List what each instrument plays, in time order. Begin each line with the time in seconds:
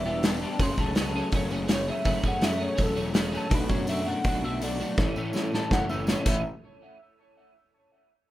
Already playing: picked electric bass E1
0.04 clean electric guitar E3 G3 B3 D4 E4 G4 B4 D5, analog synth lead E5
0.23 clean electric guitar E3 G3 B3 D4 E4 G4 B4 D5, analog synth lead A5, snare, open hi-hat
0.40 clean electric guitar E3 G3 B3 D4 E4 G4 B4 D5
0.59 picked electric bass F#1, clean electric guitar F#3 A3 C#4 G#4, analog synth lead C6, kick, open hi-hat
0.77 picked electric bass C#2, clean electric guitar F#3 A3 C#4 G#4, analog synth lead A5, kick, tambourine
0.86 tambourine
0.95 clean electric guitar F#3 A3 C#4 G#4, snare, open hi-hat, tambourine
1.05 tambourine
1.14 clean electric guitar F#3 A3 C#4 G#4
1.32 picked electric bass F#1, clean electric guitar F#3 A3 C#4 G#4, kick, open hi-hat, tambourine
1.42 tambourine
1.50 clean electric guitar F#3 A3 C#4 G#4, tambourine
1.68 clean electric guitar F#3 A3 C#4 G#4, snare, open hi-hat, tambourine
1.72 analog synth lead C#5
1.80 tambourine
1.87 clean electric guitar F#3 A3 C#4 G#4, analog synth lead E5
1.97 tambourine
2.04 picked electric bass F#1, clean electric guitar F#3 A3 C#4 G#4, kick, open hi-hat
2.23 picked electric bass F#2, clean electric guitar F#3 A3 C#4 G#4, kick, tambourine
2.28 analog synth lead F#5
2.41 clean electric guitar F#3 A3 C#4 G#4, analog synth lead E5, snare, open hi-hat, tambourine
2.53 tambourine
2.60 clean electric guitar F#3 A3 C#4 G#4
2.64 analog synth lead C#5
2.78 picked electric bass E1, clean electric guitar F#3 A3 C#4 G#4, kick, open hi-hat, tambourine
2.83 analog synth lead A4
2.88 tambourine
2.95 clean electric guitar F#3 A3 C#4 G#4, tambourine
3.13 clean electric guitar F#3 A3 C#4 G#4, snare, open hi-hat, tambourine
3.26 tambourine
3.31 clean electric guitar F#3 A3 C#4 G#4, tambourine
3.37 analog synth lead A4
3.43 tambourine
3.49 picked electric bass B1, clean electric guitar B2 F#3 A3 D4 F#4, kick, open hi-hat
3.54 analog synth lead B4
3.69 picked electric bass F#2, clean electric guitar B2 F#3 A3 D4 F#4, analog synth lead C#5, kick, tambourine
3.79 tambourine
3.87 clean electric guitar B2 F#3 A3 D4 F#4, analog synth lead E5, open hi-hat, tambourine
3.97 tambourine
4.06 clean electric guitar B2 F#3 A3 D4 F#4, analog synth lead F#5
4.24 picked electric bass B1, clean electric guitar B2 F#3 A3 D4 F#4, kick, open hi-hat, tambourine
4.33 tambourine
4.42 clean electric guitar B2 F#3 A3 D4 F#4, analog synth lead E5
4.61 clean electric guitar B2 F#3 A3 D4 F#4, analog synth lead D5, open hi-hat, tambourine
4.80 clean electric guitar B2 F#3 A3 D4 F#4, tambourine
4.89 tambourine
4.98 picked electric bass A1, clean electric guitar A2 E3 A3 C#4 E4, kick, snare
5.07 tambourine
5.16 clean electric guitar A2 E3 A3 C#4 E4, picked electric bass A2, tambourine
5.25 tambourine
5.33 clean electric guitar A2 E3 A3 C#4 E4, snare, tambourine
5.52 clean electric guitar A2 E3 A3 C#4 E4, analog synth lead A5, snare, tambourine
5.62 tambourine
5.71 picked electric bass F#1, clean electric guitar A2 E3 A3 C#4 E4, analog synth lead F#5, kick, snare
5.79 tambourine
5.89 clean electric guitar A2 E3 A3 C#4 E4, analog synth lead E5, tambourine
6.07 clean electric guitar A2 E3 A3 C#4 E4, analog synth lead C#5, snare, tambourine
6.25 picked electric bass A1, clean electric guitar A2 E3 A3 C#4 E4, analog synth lead E5, kick, crash, tambourine